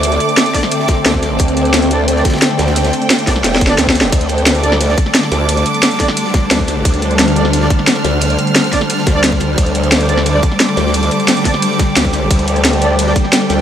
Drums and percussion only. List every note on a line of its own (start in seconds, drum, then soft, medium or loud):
0.03 closed hi-hat loud
0.03 ride medium
0.12 closed hi-hat soft
0.12 ride soft
0.20 closed hi-hat medium
0.20 ride medium
0.29 closed hi-hat soft
0.37 snare loud
0.37 closed hi-hat medium
0.37 ride medium
0.46 closed hi-hat soft
0.54 kick medium
0.54 snare soft
0.54 open hi-hat medium
0.54 ride medium
0.63 snare medium
0.71 closed hi-hat medium
0.71 ride loud
0.80 snare medium
0.88 kick loud
0.88 snare loud
0.88 closed hi-hat medium
0.88 ride medium
1.06 snare loud
1.06 closed hi-hat medium
1.06 ride loud
1.14 kick medium
1.14 ride soft
1.22 snare medium
1.22 snare soft
1.22 closed hi-hat medium
1.22 ride medium
1.39 kick loud
1.39 closed hi-hat loud
1.39 ride medium
1.48 closed hi-hat soft
1.57 closed hi-hat medium
1.57 ride medium
1.65 closed hi-hat soft
1.74 snare loud
1.74 closed hi-hat medium
1.74 ride loud
1.82 closed hi-hat soft
1.91 closed hi-hat medium
1.91 ride medium
2.08 closed hi-hat medium
2.08 ride loud
2.16 snare medium
2.24 kick loud
2.24 snare loud
2.24 closed hi-hat medium
2.24 ride medium
2.29 snare medium
2.29 ride medium
2.33 snare loud
2.33 snare soft
2.33 ride medium
2.38 snare medium
2.38 ride medium
2.42 snare loud
2.42 closed hi-hat loud
2.42 ride loud
2.51 snare soft
2.58 snare loud
2.58 snare soft
2.58 closed hi-hat medium
2.58 ride medium
2.67 snare loud
2.67 ride medium
2.76 snare loud
2.76 closed hi-hat loud
2.76 ride medium
2.84 snare loud
2.84 closed hi-hat soft
2.84 ride medium
2.93 closed hi-hat medium
2.93 ride medium
3.02 closed hi-hat soft
3.10 snare loud
3.10 closed hi-hat loud
3.10 ride loud
3.19 closed hi-hat soft
3.27 kick medium
3.27 snare loud
3.27 snare soft
3.27 open hi-hat medium
3.27 ride medium
3.36 snare medium
3.36 ride soft
3.44 snare medium
3.44 closed hi-hat loud
3.44 ride medium
3.52 snare soft
3.56 snare medium
3.61 kick loud
3.61 closed hi-hat medium
3.61 ride medium
3.67 snare medium
3.78 snare medium
3.78 closed hi-hat loud
3.78 ride medium
3.87 kick medium
3.87 snare loud
3.95 snare medium
3.95 closed hi-hat medium
3.95 ride medium
4.01 snare loud
4.12 kick loud
4.12 closed hi-hat loud
4.12 ride medium
4.12 ride bell medium
4.21 closed hi-hat soft
4.29 closed hi-hat medium
4.29 ride medium
4.29 ride bell medium
4.38 closed hi-hat soft
4.46 snare loud
4.46 closed hi-hat loud
4.46 ride loud
4.46 ride bell medium
4.55 closed hi-hat soft
4.63 closed hi-hat medium
4.63 ride medium
4.63 ride bell medium
4.72 snare medium
4.81 closed hi-hat loud
4.81 ride medium
4.81 ride bell medium
4.89 snare medium
4.97 kick loud
4.97 closed hi-hat medium
4.97 ride medium
4.97 ride bell medium
5.06 snare soft
5.14 snare loud
5.14 closed hi-hat loud
5.14 ride medium
5.14 ride bell medium
5.23 snare soft
5.32 snare medium
5.32 snare soft
5.32 closed hi-hat medium
5.32 ride medium
5.32 ride bell medium
5.49 closed hi-hat loud
5.49 ride loud
5.49 ride bell medium
5.57 closed hi-hat soft
5.57 ride soft
5.66 closed hi-hat medium
5.66 ride medium
5.66 ride bell medium
5.74 closed hi-hat soft
5.83 snare loud
5.83 closed hi-hat medium
5.83 ride medium
5.83 ride bell medium
5.91 closed hi-hat soft
5.99 kick medium
5.99 snare soft
5.99 open hi-hat medium
5.99 ride medium
5.99 ride bell medium
6.08 snare medium
6.17 closed hi-hat loud
6.17 ride medium
6.17 ride bell medium
6.25 snare medium
6.34 kick loud
6.34 snare loud
6.34 closed hi-hat medium
6.34 ride medium
6.34 ride bell medium
6.51 snare loud
6.51 closed hi-hat medium
6.51 ride loud
6.51 ride bell medium
6.60 kick medium
6.60 ride soft
6.68 snare medium
6.68 snare soft
6.68 closed hi-hat medium
6.68 ride medium
6.68 ride bell soft
6.85 kick loud
6.85 closed hi-hat medium
6.85 ride loud
6.85 ride bell medium
6.94 closed hi-hat soft
7.02 closed hi-hat medium
7.02 ride medium
7.02 ride bell medium
7.11 closed hi-hat soft
7.19 snare loud
7.19 closed hi-hat medium
7.19 ride medium
7.19 ride bell medium
7.28 closed hi-hat soft
7.36 closed hi-hat medium
7.36 ride medium
7.36 ride bell medium
7.45 snare medium
7.53 closed hi-hat medium
7.53 ride medium
7.53 ride bell medium
7.61 snare medium
7.70 kick loud
7.70 closed hi-hat medium
7.70 ride medium
7.70 ride bell medium
7.79 snare soft
7.87 snare loud
7.87 closed hi-hat medium
7.87 ride medium
7.87 ride bell medium
7.96 snare soft
8.04 snare medium
8.04 snare soft
8.04 closed hi-hat medium
8.04 ride medium
8.04 ride bell soft
8.21 closed hi-hat loud
8.21 ride medium
8.21 ride bell medium
8.30 closed hi-hat soft
8.30 ride soft
8.39 closed hi-hat medium
8.39 ride medium
8.39 ride bell soft
8.47 closed hi-hat soft
8.55 snare loud
8.55 closed hi-hat medium
8.55 ride medium
8.55 ride bell medium
8.64 closed hi-hat soft
8.72 kick medium
8.72 snare soft
8.72 open hi-hat medium
8.72 ride medium
8.72 ride bell medium
8.81 snare medium
8.90 closed hi-hat medium
8.90 ride medium
8.90 ride bell medium
8.98 snare medium
9.06 kick loud
9.06 snare loud
9.06 closed hi-hat medium
9.06 ride medium
9.06 ride bell medium
9.23 snare loud
9.23 closed hi-hat medium
9.23 ride medium
9.23 ride bell medium
9.32 kick medium
9.40 snare soft
9.40 closed hi-hat medium
9.40 ride medium
9.40 ride bell soft
9.58 kick loud
9.58 closed hi-hat medium
9.58 ride medium
9.58 ride bell medium
9.66 closed hi-hat soft
9.75 closed hi-hat medium
9.75 ride medium
9.75 ride bell medium
9.83 closed hi-hat soft
9.92 snare loud
9.92 closed hi-hat medium
9.92 ride medium
9.92 ride bell medium
10.00 closed hi-hat soft
10.09 closed hi-hat medium
10.09 ride medium
10.09 ride bell medium
10.17 snare medium
10.26 closed hi-hat medium
10.26 ride medium
10.26 ride bell medium
10.42 kick loud
10.42 closed hi-hat medium
10.42 ride medium
10.42 ride bell medium
10.52 snare soft
10.59 snare loud
10.59 closed hi-hat medium
10.59 ride loud
10.59 ride bell medium
10.69 snare soft
10.77 snare medium
10.77 snare soft
10.77 closed hi-hat medium
10.77 ride medium
10.77 ride bell medium
10.86 snare medium
10.94 closed hi-hat medium
10.94 ride medium
10.94 ride bell medium
11.03 closed hi-hat soft
11.03 ride soft
11.11 closed hi-hat medium
11.11 ride medium
11.11 ride bell medium
11.20 closed hi-hat soft
11.28 snare loud
11.28 closed hi-hat medium
11.28 ride medium
11.28 ride bell medium
11.37 closed hi-hat soft
11.45 kick medium
11.45 snare soft
11.45 open hi-hat medium
11.45 ride medium
11.45 ride bell medium
11.54 snare medium
11.62 closed hi-hat medium
11.62 ride medium
11.62 ride bell medium
11.71 snare soft
11.79 kick loud
11.79 snare loud
11.79 closed hi-hat medium
11.79 ride medium
11.79 ride bell medium
11.96 snare loud
11.96 closed hi-hat loud
11.96 ride medium
11.96 ride bell medium
12.05 kick medium
12.05 ride soft
12.13 snare medium
12.13 snare soft
12.13 closed hi-hat medium
12.13 ride medium
12.13 ride bell medium
12.31 kick loud
12.31 closed hi-hat loud
12.31 ride medium
12.31 ride bell medium
12.39 closed hi-hat soft
12.48 closed hi-hat medium
12.48 ride medium
12.48 ride bell medium
12.56 closed hi-hat soft
12.65 snare loud
12.65 closed hi-hat loud
12.65 ride loud
12.65 ride bell medium
12.73 closed hi-hat soft
12.82 closed hi-hat medium
12.82 ride medium
12.82 ride bell medium
12.99 closed hi-hat loud
12.99 ride medium
12.99 ride bell medium
13.07 snare medium
13.16 kick loud
13.16 closed hi-hat medium
13.16 ride medium
13.16 ride bell medium
13.24 snare soft
13.32 snare loud
13.32 closed hi-hat loud
13.32 ride medium
13.32 ride bell medium
13.41 snare soft
13.49 snare soft
13.49 closed hi-hat medium
13.49 ride medium
13.49 ride bell medium
13.58 snare medium